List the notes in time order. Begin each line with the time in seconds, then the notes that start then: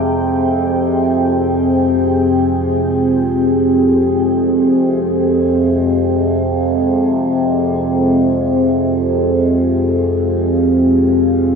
Already playing: F2 C3 C4 G#4 G5
5.05 F2 C3
8.44 F5